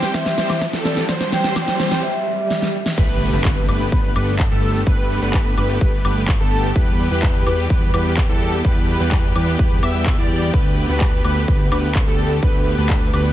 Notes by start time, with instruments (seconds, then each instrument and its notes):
Already playing: supersaw synth E3 G3 C4 G4 C5, string section E3 G3 C4 G4, analog synth lead C5, vibraphone G5, riser
0.02 snare, closed hi-hat, cabasa
0.14 supersaw synth E3 G3 C4 G4 C5, analog synth lead C5, vibraphone E5, kick, snare, closed hi-hat, cabasa
0.26 snare, closed hi-hat, cabasa
0.38 supersaw synth E3 G3 C4 G4 C5, analog synth lead C5, vibraphone E5, snare, open hi-hat
0.50 snare, closed hi-hat, cabasa, high woodblock
0.62 kick, snare, closed hi-hat, cabasa
0.73 supersaw synth E3 G3 C4 G4 A4, analog synth lead A4, snare, cabasa
0.85 vibraphone D5, snare, open hi-hat
0.97 snare, closed hi-hat, cabasa
1.09 supersaw synth E3, vibraphone C5, analog synth lead C5, kick, snare, closed hi-hat, cabasa
1.21 snare, closed hi-hat, cabasa
1.32 vibraphone G5, snare, open hi-hat
1.44 supersaw synth E3 G3 C4 G4 C5, analog synth lead C5, snare, cabasa
1.56 kick, snare, closed hi-hat, cabasa, high woodblock
1.68 snare, closed hi-hat, cabasa
1.80 supersaw synth E3 G3 C4 G4 C5, analog synth lead C5, snare, open hi-hat
1.91 snare, closed hi-hat, cabasa
2.03 vibraphone E5, swell
2.27 vibraphone E5
2.51 snare
2.62 snare
2.86 snare
2.98 analog synth bass G1, supersaw synth D3 A3 B3 G4 B4, string section D3 A3 B3 G4, analog synth lead B4, kick, closed hi-hat, crash, impact, cabasa
3.10 closed hi-hat, cabasa
3.21 open hi-hat
3.33 analog synth bass G1, supersaw synth D3 A3 B3 G4 B4, analog synth lead B4, closed hi-hat, cabasa
3.45 kick, clap, closed hi-hat, cabasa
3.57 closed hi-hat, cabasa
3.69 analog synth bass G1, supersaw synth D3 A3 B3 G4 B4, analog synth lead B4, open hi-hat, high woodblock
3.80 closed hi-hat, cabasa
3.92 analog synth bass G1, supersaw synth A3 B3 G4 B4, analog synth lead B4, kick, closed hi-hat, cabasa
4.04 closed hi-hat, cabasa
4.16 analog synth bass G1, supersaw synth D3 A3 B3 G4 B4, analog synth lead B4, open hi-hat, high woodblock
4.28 closed hi-hat, cabasa
4.39 kick, clap, closed hi-hat, cabasa
4.51 analog synth bass G1, supersaw synth D3 A3 B3 G4 A4, analog synth lead A4, closed hi-hat, cabasa
4.63 open hi-hat
4.75 closed hi-hat, cabasa
4.87 analog synth bass G1, supersaw synth D3 A3 B3 G4 B4, analog synth lead B4, kick, closed hi-hat, cabasa
4.99 closed hi-hat, cabasa
5.10 open hi-hat
5.22 analog synth bass G1, supersaw synth D3 A3 B3 G4 B4, analog synth lead B4, cabasa
5.34 kick, clap, closed hi-hat, cabasa
5.46 closed hi-hat, cabasa
5.57 analog synth bass G1, supersaw synth D3 A3 B3 G4 B4, analog synth lead B4, open hi-hat, high woodblock
5.69 closed hi-hat, cabasa
5.81 analog synth bass G1, supersaw synth D3 A3 B3 G4 B4, analog synth lead B4, kick, closed hi-hat, cabasa
5.93 closed hi-hat, cabasa
6.05 analog synth bass G1, supersaw synth D3 A3 B3 G4 B4, analog synth lead B4, open hi-hat, high woodblock
6.17 closed hi-hat, cabasa
6.28 kick, clap, closed hi-hat, cabasa
6.40 analog synth bass G1, supersaw synth D3 A3 B3 G4 A4, analog synth lead A4, closed hi-hat, cabasa
6.52 open hi-hat
6.64 closed hi-hat, cabasa
6.76 analog synth bass E2, supersaw synth E3 G3 B3 G4, string section E3 G3, analog synth lead B4, kick, closed hi-hat, cabasa
6.88 closed hi-hat, cabasa
6.99 open hi-hat
7.11 analog synth bass E2, supersaw synth E3 G3 B3 G4 B4, analog synth lead B4, closed hi-hat, cabasa
7.23 kick, clap, closed hi-hat, cabasa
7.35 closed hi-hat, cabasa
7.47 analog synth bass E2, supersaw synth E3 G3 B3 G4 B4, analog synth lead B4, open hi-hat, high woodblock
7.58 closed hi-hat, cabasa
7.70 analog synth bass E2, supersaw synth E3 G3 B3 G4 B4, analog synth lead B4, kick, closed hi-hat, cabasa
7.82 closed hi-hat, cabasa
7.94 analog synth bass E2, supersaw synth E3 G3 B3 G4 B4, analog synth lead B4, open hi-hat, high woodblock
8.06 cabasa
8.17 kick, clap, closed hi-hat, cabasa
8.29 analog synth bass E2, supersaw synth E3 G3 B3 G4 A4, analog synth lead A4, closed hi-hat, cabasa
8.41 open hi-hat
8.53 closed hi-hat, cabasa
8.65 analog synth bass E2, supersaw synth E3 G3 B3 G4 B4, analog synth lead B4, kick, closed hi-hat, cabasa
8.77 closed hi-hat, cabasa
8.88 open hi-hat
9.00 analog synth bass E2, supersaw synth E3 G3 B3 G4 B4, analog synth lead B4, closed hi-hat, cabasa
9.12 kick, clap, closed hi-hat, cabasa
9.24 closed hi-hat, cabasa
9.36 analog synth bass E2, supersaw synth E3 G3 B3 G4 B4, analog synth lead B4, open hi-hat, high woodblock
9.47 closed hi-hat, cabasa
9.59 analog synth bass E2, supersaw synth E3 G3 B3 G4 B4, analog synth lead B4, kick, closed hi-hat, cabasa
9.71 closed hi-hat, cabasa
9.83 analog synth bass E2, supersaw synth E3 G3 B3 G4 E5, analog synth lead E5, open hi-hat, high woodblock
9.95 closed hi-hat, cabasa
10.06 kick, clap, closed hi-hat, cabasa
10.18 analog synth bass E2, supersaw synth E3 G3 B3 G4 D5, analog synth lead D5, closed hi-hat, cabasa
10.30 open hi-hat
10.43 cabasa
10.54 analog synth bass D2, string section D3 A3, supersaw synth B3 B4, analog synth lead B4, kick, closed hi-hat, cabasa
10.66 closed hi-hat, cabasa
10.77 open hi-hat
10.89 analog synth bass D2, supersaw synth D3 A3 B3 G4 B4, analog synth lead B4, cabasa
11.01 kick, clap, closed hi-hat, cabasa
11.13 closed hi-hat, cabasa
11.24 analog synth bass D2, supersaw synth D3 A3 B3 G4 B4, analog synth lead B4, open hi-hat, high woodblock
11.36 closed hi-hat, cabasa
11.48 analog synth bass D2, supersaw synth D3 B3 G4 B4, analog synth lead B4, kick, closed hi-hat, cabasa
11.60 closed hi-hat, cabasa
11.72 analog synth bass D2, supersaw synth D3 A3 B3 G4 B4, analog synth lead B4, open hi-hat, high woodblock
11.84 cabasa
11.95 kick, clap, closed hi-hat, cabasa
12.07 analog synth bass D2, supersaw synth D3 A3 B3 G4 A4, analog synth lead A4, closed hi-hat, cabasa
12.19 open hi-hat
12.31 closed hi-hat, cabasa
12.43 analog synth bass D2, supersaw synth A3 B3 G4 B4, analog synth lead B4, kick, closed hi-hat, cabasa
12.54 closed hi-hat, cabasa
12.66 open hi-hat
12.78 analog synth bass D2, supersaw synth D3 A3 B3 G4 B4, analog synth lead B4, closed hi-hat, cabasa
12.90 kick, clap, closed hi-hat, cabasa
13.02 closed hi-hat, cabasa
13.13 analog synth bass D2, supersaw synth D3 A3 B3 G4 B4, analog synth lead B4, open hi-hat, high woodblock
13.25 closed hi-hat, cabasa